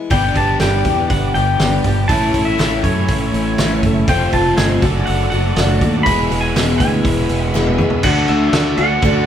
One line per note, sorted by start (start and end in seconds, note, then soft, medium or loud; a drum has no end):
0.00 0.11 E3 soft
0.00 0.11 G#3 soft
0.00 0.10 B3 soft
0.00 0.11 E4 medium
0.10 0.33 G1 medium
0.10 0.36 G2 medium
0.10 0.36 D3 medium
0.10 0.36 G3 medium
0.10 0.36 B3 medium
0.10 0.35 D4 medium
0.10 0.34 G4 medium
0.10 2.09 B4 medium
0.10 2.09 D5 medium
0.10 0.37 G5 medium
0.10 2.09 G5 medium
0.10 2.09 D6 medium
0.10 kick loud
0.10 open hi-hat medium
0.35 0.57 G1 medium
0.35 0.60 G3 soft
0.35 0.60 B3 soft
0.35 0.61 D4 medium
0.35 0.61 G4 medium
0.35 0.61 A5 loud
0.35 kick medium
0.35 open hi-hat medium
0.59 0.82 G1 medium
0.59 0.85 G2 medium
0.59 0.86 D3 medium
0.59 0.86 G3 medium
0.59 0.86 B3 medium
0.59 0.86 D4 medium
0.59 0.84 G4 medium
0.59 1.10 G5 medium
0.59 snare loud
0.59 open hi-hat medium
0.85 1.07 E2 medium
0.85 1.37 G3 soft
0.85 1.36 B3 soft
0.85 1.35 D4 soft
0.85 1.35 G4 medium
0.85 kick medium
0.85 open hi-hat medium
1.10 1.32 G1 medium
1.10 1.33 F#5 medium
1.10 kick loud
1.10 open hi-hat medium
1.34 1.57 G1 medium
1.34 1.60 B3 soft
1.34 1.60 D4 soft
1.34 1.60 G4 soft
1.34 2.07 G5 loud
1.34 open hi-hat medium
1.38 1.60 G3 soft
1.59 1.82 G1 medium
1.59 1.85 G2 medium
1.59 1.85 D3 medium
1.59 1.86 G3 medium
1.59 1.86 B3 medium
1.59 1.84 D4 medium
1.59 1.84 G4 medium
1.59 snare loud
1.59 open hi-hat medium
1.84 2.06 G1 medium
1.84 2.10 G3 soft
1.84 2.10 B3 soft
1.84 2.10 D4 soft
1.84 2.10 G4 medium
1.84 kick medium
1.84 open hi-hat medium
2.08 2.31 A1 medium
2.08 2.34 A2 medium
2.08 2.35 E3 medium
2.08 2.35 A3 medium
2.08 2.34 C#4 medium
2.08 2.32 E4 medium
2.08 6.02 A4 medium
2.08 4.06 C#5 medium
2.08 4.06 E5 medium
2.08 2.47 A5 loud
2.08 4.06 C#6 medium
2.08 kick loud
2.08 open hi-hat medium
2.33 2.56 A1 medium
2.33 2.58 A3 soft
2.33 2.59 C#4 soft
2.33 2.59 E4 medium
2.33 kick medium
2.33 open hi-hat medium
2.45 2.84 E5 medium
2.58 2.81 A1 medium
2.58 2.84 A2 medium
2.58 2.84 E3 medium
2.58 2.84 A3 medium
2.58 2.83 C#4 medium
2.58 2.82 E4 medium
2.58 snare loud
2.58 open hi-hat medium
2.83 3.06 F#2 medium
2.83 3.34 A3 soft
2.83 3.33 C#4 soft
2.83 3.32 E4 medium
2.83 3.79 C#5 medium
2.83 kick medium
2.83 open hi-hat medium
3.08 3.30 A1 medium
3.08 kick loud
3.08 open hi-hat medium
3.33 3.55 A1 medium
3.33 3.59 A3 soft
3.33 3.59 C#4 soft
3.33 3.58 E4 medium
3.33 open hi-hat medium
3.58 3.80 A1 medium
3.58 3.84 A2 loud
3.58 3.84 E3 medium
3.58 3.84 A3 medium
3.58 3.84 C#4 loud
3.58 3.82 E4 loud
3.58 snare loud
3.58 open hi-hat medium
3.83 4.05 F#1 medium
3.83 4.08 A3 medium
3.83 4.09 C#4 medium
3.83 4.08 E4 medium
3.83 kick medium
3.83 open hi-hat medium
4.07 4.30 F1 medium
4.07 4.33 F2 medium
4.07 4.33 C3 medium
4.07 4.33 F3 medium
4.07 4.34 A3 medium
4.07 4.33 C4 medium
4.07 4.32 F4 medium
4.07 4.82 C5 medium
4.07 4.82 F5 medium
4.07 4.33 G5 medium
4.07 4.82 C6 medium
4.07 kick loud
4.07 open hi-hat medium
4.33 4.55 F1 medium
4.33 4.57 F3 soft
4.33 4.58 A3 medium
4.33 4.58 C4 medium
4.33 4.58 F4 medium
4.33 4.57 A5 medium
4.33 kick medium
4.33 open hi-hat medium
4.57 4.80 G1 medium
4.57 4.83 F2 medium
4.57 4.83 C3 medium
4.57 4.83 F3 medium
4.57 4.83 A3 medium
4.57 4.83 C4 medium
4.57 4.82 F4 loud
4.57 5.05 G#5 medium
4.57 snare loud
4.57 open hi-hat medium
4.81 5.04 F#1 medium
4.81 6.04 F#3 medium
4.81 5.32 D4 soft
4.81 5.30 F#4 medium
4.81 6.05 D5 medium
4.81 6.05 F#5 medium
4.81 6.06 D6 medium
4.81 kick loud
4.81 open hi-hat medium
4.86 5.33 A3 soft
5.06 5.29 F#1 medium
5.06 5.29 F#5 medium
5.06 open hi-hat medium
5.30 5.54 F#1 medium
5.30 5.58 D4 soft
5.30 5.57 F#4 soft
5.30 6.03 F#5 medium
5.30 open hi-hat soft
5.34 5.58 A3 soft
5.56 5.78 F#1 medium
5.56 5.82 F#3 medium
5.56 5.83 A3 medium
5.56 5.82 D4 medium
5.56 5.80 F#4 medium
5.56 snare loud
5.56 open hi-hat medium
5.81 6.03 D#2 loud
5.81 6.07 A3 soft
5.81 6.07 D4 soft
5.81 6.06 F#4 medium
5.81 kick medium
5.81 open hi-hat medium
6.03 6.28 E1 medium
6.03 6.31 E2 medium
6.03 6.31 B2 medium
6.03 6.31 E3 medium
6.03 8.02 B4 medium
6.03 8.02 E5 medium
6.03 8.02 G#5 medium
6.03 6.40 B5 loud
6.03 8.02 E6 medium
6.03 kick loud
6.03 open hi-hat medium
6.08 6.31 G#3 medium
6.08 6.30 B3 medium
6.08 6.29 G#4 medium
6.30 6.52 E1 medium
6.30 6.55 E3 soft
6.30 6.56 G#3 medium
6.30 6.56 B3 medium
6.30 6.55 G#4 medium
6.30 open hi-hat medium
6.41 6.77 G#5 medium
6.56 6.77 E1 medium
6.56 6.81 E2 medium
6.56 6.81 B2 medium
6.56 6.81 E3 medium
6.56 6.81 G#3 medium
6.56 6.79 B3 medium
6.56 6.78 G#4 medium
6.56 snare loud
6.56 open hi-hat medium
6.78 7.02 D2 medium
6.78 7.29 G#3 soft
6.78 7.29 B3 medium
6.78 7.28 G#4 medium
6.78 7.46 G#5 medium
6.78 kick medium
6.78 open hi-hat medium
6.82 7.31 E3 medium
7.05 7.27 E1 medium
7.05 kick loud
7.05 open hi-hat medium
7.29 7.51 E1 medium
7.29 7.54 E3 soft
7.29 7.54 G#3 soft
7.29 7.54 B3 medium
7.29 7.54 G#4 medium
7.29 open hi-hat medium
7.46 7.74 F#5 medium
7.54 7.76 E1 loud
7.54 7.79 E2 medium
7.54 7.79 B2 medium
7.54 7.80 E3 loud
7.54 7.80 G#3 loud
7.54 7.79 B3 loud
7.54 7.78 G#4 loud
7.54 snare medium
7.67 high tom medium
7.78 8.01 E2 loud
7.78 8.03 E3 soft
7.78 8.04 G#3 soft
7.78 8.04 B3 medium
7.78 8.04 G#4 medium
7.78 mid tom medium
7.90 floor tom medium
8.03 8.27 D2 medium
8.03 8.52 D3 medium
8.03 8.54 A3 medium
8.03 8.54 D4 medium
8.03 8.56 F#4 medium
8.03 8.74 A4 medium
8.03 9.26 A4 medium
8.03 8.74 D5 medium
8.03 9.26 D5 medium
8.03 8.30 F#5 loud
8.03 8.74 F#5 medium
8.03 9.26 D6 medium
8.03 kick loud
8.03 crash loud
8.03 crash medium
8.28 8.52 D2 medium
8.28 8.53 A3 medium
8.28 8.53 D4 medium
8.28 8.54 F#4 medium
8.28 8.75 E5 medium
8.28 crash medium
8.53 8.76 D2 medium
8.53 8.78 D3 medium
8.53 8.79 A3 medium
8.53 8.79 D4 medium
8.53 8.77 F#4 medium
8.53 snare loud
8.53 crash medium
8.77 9.01 D2 medium
8.77 9.01 D3 medium
8.77 9.03 A3 soft
8.77 9.04 D4 soft
8.77 9.03 F#4 medium
8.77 9.26 A4 medium
8.77 9.26 D5 medium
8.77 9.24 F#5 loud
8.77 9.26 G#5 medium
8.77 crash medium
9.02 9.26 D2 medium
9.02 9.26 D3 medium
9.02 9.26 A3 medium
9.02 9.26 D4 medium
9.02 9.26 F#4 loud
9.02 kick loud
9.02 crash medium